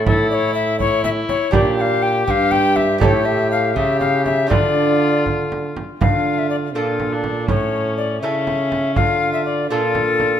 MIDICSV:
0, 0, Header, 1, 6, 480
1, 0, Start_track
1, 0, Key_signature, -1, "minor"
1, 0, Tempo, 493827
1, 62, Time_signature, 6, 3, 24, 8
1, 5842, Key_signature, -1, "minor"
1, 10108, End_track
2, 0, Start_track
2, 0, Title_t, "Recorder"
2, 0, Program_c, 0, 74
2, 66, Note_on_c, 0, 69, 84
2, 290, Note_off_c, 0, 69, 0
2, 296, Note_on_c, 0, 74, 86
2, 333, Note_on_c, 0, 73, 94
2, 343, Note_off_c, 0, 74, 0
2, 521, Note_off_c, 0, 73, 0
2, 527, Note_on_c, 0, 76, 92
2, 767, Note_off_c, 0, 76, 0
2, 775, Note_on_c, 0, 73, 99
2, 1007, Note_off_c, 0, 73, 0
2, 1013, Note_on_c, 0, 76, 106
2, 1072, Note_off_c, 0, 76, 0
2, 1254, Note_on_c, 0, 73, 93
2, 1484, Note_on_c, 0, 74, 91
2, 1499, Note_off_c, 0, 73, 0
2, 1719, Note_off_c, 0, 74, 0
2, 1725, Note_on_c, 0, 79, 85
2, 1760, Note_on_c, 0, 77, 93
2, 1769, Note_off_c, 0, 79, 0
2, 1968, Note_on_c, 0, 79, 93
2, 1983, Note_off_c, 0, 77, 0
2, 2197, Note_off_c, 0, 79, 0
2, 2202, Note_on_c, 0, 79, 92
2, 2241, Note_on_c, 0, 77, 100
2, 2250, Note_off_c, 0, 79, 0
2, 2443, Note_on_c, 0, 79, 109
2, 2457, Note_off_c, 0, 77, 0
2, 2683, Note_on_c, 0, 76, 101
2, 2698, Note_off_c, 0, 79, 0
2, 2914, Note_off_c, 0, 76, 0
2, 2920, Note_on_c, 0, 74, 84
2, 2966, Note_on_c, 0, 73, 91
2, 2975, Note_off_c, 0, 74, 0
2, 3162, Note_on_c, 0, 76, 98
2, 3177, Note_off_c, 0, 73, 0
2, 3408, Note_off_c, 0, 76, 0
2, 3417, Note_on_c, 0, 77, 91
2, 3656, Note_on_c, 0, 76, 82
2, 3670, Note_off_c, 0, 77, 0
2, 3885, Note_off_c, 0, 76, 0
2, 3891, Note_on_c, 0, 77, 94
2, 4127, Note_off_c, 0, 77, 0
2, 4133, Note_on_c, 0, 76, 93
2, 4366, Note_off_c, 0, 76, 0
2, 4372, Note_on_c, 0, 74, 86
2, 5093, Note_off_c, 0, 74, 0
2, 5841, Note_on_c, 0, 77, 71
2, 6206, Note_on_c, 0, 76, 60
2, 6221, Note_off_c, 0, 77, 0
2, 6311, Note_off_c, 0, 76, 0
2, 6317, Note_on_c, 0, 74, 67
2, 6375, Note_off_c, 0, 74, 0
2, 6557, Note_on_c, 0, 69, 73
2, 7264, Note_off_c, 0, 69, 0
2, 7280, Note_on_c, 0, 73, 79
2, 7744, Note_off_c, 0, 73, 0
2, 7750, Note_on_c, 0, 74, 72
2, 7981, Note_off_c, 0, 74, 0
2, 7987, Note_on_c, 0, 76, 80
2, 8695, Note_off_c, 0, 76, 0
2, 8703, Note_on_c, 0, 77, 83
2, 9060, Note_off_c, 0, 77, 0
2, 9072, Note_on_c, 0, 76, 69
2, 9181, Note_off_c, 0, 76, 0
2, 9186, Note_on_c, 0, 74, 71
2, 9423, Note_off_c, 0, 74, 0
2, 9427, Note_on_c, 0, 69, 83
2, 10108, Note_off_c, 0, 69, 0
2, 10108, End_track
3, 0, Start_track
3, 0, Title_t, "Viola"
3, 0, Program_c, 1, 41
3, 65, Note_on_c, 1, 64, 70
3, 765, Note_off_c, 1, 64, 0
3, 789, Note_on_c, 1, 64, 77
3, 1485, Note_off_c, 1, 64, 0
3, 1498, Note_on_c, 1, 67, 79
3, 2906, Note_off_c, 1, 67, 0
3, 2936, Note_on_c, 1, 67, 67
3, 3642, Note_off_c, 1, 67, 0
3, 3658, Note_on_c, 1, 67, 72
3, 4392, Note_on_c, 1, 65, 67
3, 4406, Note_off_c, 1, 67, 0
3, 5650, Note_off_c, 1, 65, 0
3, 5848, Note_on_c, 1, 65, 51
3, 6527, Note_off_c, 1, 65, 0
3, 6560, Note_on_c, 1, 65, 53
3, 6924, Note_on_c, 1, 62, 55
3, 6938, Note_off_c, 1, 65, 0
3, 7277, Note_on_c, 1, 61, 54
3, 7292, Note_off_c, 1, 62, 0
3, 7989, Note_off_c, 1, 61, 0
3, 7994, Note_on_c, 1, 61, 62
3, 8712, Note_on_c, 1, 65, 56
3, 8727, Note_off_c, 1, 61, 0
3, 9420, Note_off_c, 1, 65, 0
3, 9425, Note_on_c, 1, 65, 60
3, 10108, Note_off_c, 1, 65, 0
3, 10108, End_track
4, 0, Start_track
4, 0, Title_t, "Lute"
4, 0, Program_c, 2, 24
4, 0, Note_on_c, 2, 45, 61
4, 0, Note_on_c, 2, 64, 52
4, 0, Note_on_c, 2, 69, 52
4, 1187, Note_off_c, 2, 45, 0
4, 1438, Note_off_c, 2, 64, 0
4, 1447, Note_off_c, 2, 69, 0
4, 1466, Note_on_c, 2, 62, 52
4, 1477, Note_on_c, 2, 67, 50
4, 1496, Note_on_c, 2, 46, 61
4, 2175, Note_off_c, 2, 46, 0
4, 2212, Note_on_c, 2, 43, 60
4, 2880, Note_off_c, 2, 62, 0
4, 2885, Note_off_c, 2, 67, 0
4, 2894, Note_off_c, 2, 43, 0
4, 2898, Note_on_c, 2, 64, 55
4, 2915, Note_on_c, 2, 67, 51
4, 2927, Note_on_c, 2, 69, 53
4, 2940, Note_on_c, 2, 45, 55
4, 3620, Note_off_c, 2, 45, 0
4, 3654, Note_on_c, 2, 49, 61
4, 4328, Note_off_c, 2, 64, 0
4, 4336, Note_off_c, 2, 67, 0
4, 4341, Note_on_c, 2, 62, 47
4, 4342, Note_off_c, 2, 69, 0
4, 4344, Note_off_c, 2, 49, 0
4, 4354, Note_on_c, 2, 65, 51
4, 4366, Note_on_c, 2, 69, 50
4, 4374, Note_on_c, 2, 50, 54
4, 5556, Note_off_c, 2, 50, 0
4, 5782, Note_off_c, 2, 62, 0
4, 5788, Note_off_c, 2, 65, 0
4, 5794, Note_off_c, 2, 69, 0
4, 5839, Note_on_c, 2, 50, 47
4, 6523, Note_off_c, 2, 50, 0
4, 6564, Note_on_c, 2, 46, 44
4, 6565, Note_on_c, 2, 62, 40
4, 6568, Note_on_c, 2, 69, 47
4, 6569, Note_on_c, 2, 65, 43
4, 7243, Note_off_c, 2, 46, 0
4, 7243, Note_off_c, 2, 62, 0
4, 7244, Note_off_c, 2, 65, 0
4, 7245, Note_off_c, 2, 69, 0
4, 7284, Note_on_c, 2, 45, 49
4, 7961, Note_off_c, 2, 45, 0
4, 7996, Note_on_c, 2, 49, 48
4, 7999, Note_on_c, 2, 61, 46
4, 8005, Note_on_c, 2, 64, 43
4, 8007, Note_on_c, 2, 69, 51
4, 8675, Note_off_c, 2, 61, 0
4, 8676, Note_off_c, 2, 64, 0
4, 8677, Note_off_c, 2, 49, 0
4, 8680, Note_off_c, 2, 69, 0
4, 8721, Note_on_c, 2, 50, 47
4, 9395, Note_off_c, 2, 50, 0
4, 9432, Note_on_c, 2, 62, 50
4, 9438, Note_on_c, 2, 46, 53
4, 9441, Note_on_c, 2, 65, 46
4, 9446, Note_on_c, 2, 69, 52
4, 10107, Note_off_c, 2, 62, 0
4, 10108, Note_off_c, 2, 46, 0
4, 10108, Note_off_c, 2, 65, 0
4, 10108, Note_off_c, 2, 69, 0
4, 10108, End_track
5, 0, Start_track
5, 0, Title_t, "Trombone"
5, 0, Program_c, 3, 57
5, 0, Note_on_c, 3, 45, 78
5, 1189, Note_off_c, 3, 45, 0
5, 1483, Note_on_c, 3, 46, 78
5, 2169, Note_off_c, 3, 46, 0
5, 2208, Note_on_c, 3, 43, 73
5, 2927, Note_on_c, 3, 45, 79
5, 2942, Note_off_c, 3, 43, 0
5, 3649, Note_on_c, 3, 49, 69
5, 3663, Note_off_c, 3, 45, 0
5, 4376, Note_off_c, 3, 49, 0
5, 4381, Note_on_c, 3, 50, 72
5, 5574, Note_off_c, 3, 50, 0
5, 5843, Note_on_c, 3, 50, 58
5, 6563, Note_on_c, 3, 46, 56
5, 6577, Note_off_c, 3, 50, 0
5, 7281, Note_on_c, 3, 45, 64
5, 7296, Note_off_c, 3, 46, 0
5, 7987, Note_off_c, 3, 45, 0
5, 7993, Note_on_c, 3, 49, 59
5, 8716, Note_on_c, 3, 50, 60
5, 8731, Note_off_c, 3, 49, 0
5, 9425, Note_off_c, 3, 50, 0
5, 9431, Note_on_c, 3, 46, 61
5, 10108, Note_off_c, 3, 46, 0
5, 10108, End_track
6, 0, Start_track
6, 0, Title_t, "Frame drum"
6, 63, Note_on_c, 9, 64, 84
6, 160, Note_off_c, 9, 64, 0
6, 778, Note_on_c, 9, 64, 49
6, 876, Note_off_c, 9, 64, 0
6, 1012, Note_on_c, 9, 64, 57
6, 1109, Note_off_c, 9, 64, 0
6, 1256, Note_on_c, 9, 64, 53
6, 1353, Note_off_c, 9, 64, 0
6, 1488, Note_on_c, 9, 64, 80
6, 1585, Note_off_c, 9, 64, 0
6, 2214, Note_on_c, 9, 64, 49
6, 2311, Note_off_c, 9, 64, 0
6, 2447, Note_on_c, 9, 64, 55
6, 2545, Note_off_c, 9, 64, 0
6, 2690, Note_on_c, 9, 64, 53
6, 2787, Note_off_c, 9, 64, 0
6, 2929, Note_on_c, 9, 64, 82
6, 3026, Note_off_c, 9, 64, 0
6, 3659, Note_on_c, 9, 64, 49
6, 3756, Note_off_c, 9, 64, 0
6, 3898, Note_on_c, 9, 64, 51
6, 3995, Note_off_c, 9, 64, 0
6, 4140, Note_on_c, 9, 64, 52
6, 4237, Note_off_c, 9, 64, 0
6, 4384, Note_on_c, 9, 64, 80
6, 4482, Note_off_c, 9, 64, 0
6, 5115, Note_on_c, 9, 64, 47
6, 5212, Note_off_c, 9, 64, 0
6, 5366, Note_on_c, 9, 64, 51
6, 5463, Note_off_c, 9, 64, 0
6, 5605, Note_on_c, 9, 64, 52
6, 5702, Note_off_c, 9, 64, 0
6, 5846, Note_on_c, 9, 64, 76
6, 5943, Note_off_c, 9, 64, 0
6, 6801, Note_on_c, 9, 64, 49
6, 6898, Note_off_c, 9, 64, 0
6, 7035, Note_on_c, 9, 64, 49
6, 7132, Note_off_c, 9, 64, 0
6, 7274, Note_on_c, 9, 64, 72
6, 7371, Note_off_c, 9, 64, 0
6, 8235, Note_on_c, 9, 64, 51
6, 8333, Note_off_c, 9, 64, 0
6, 8476, Note_on_c, 9, 64, 50
6, 8573, Note_off_c, 9, 64, 0
6, 8713, Note_on_c, 9, 64, 77
6, 8810, Note_off_c, 9, 64, 0
6, 9672, Note_on_c, 9, 64, 53
6, 9769, Note_off_c, 9, 64, 0
6, 9913, Note_on_c, 9, 64, 51
6, 10010, Note_off_c, 9, 64, 0
6, 10108, End_track
0, 0, End_of_file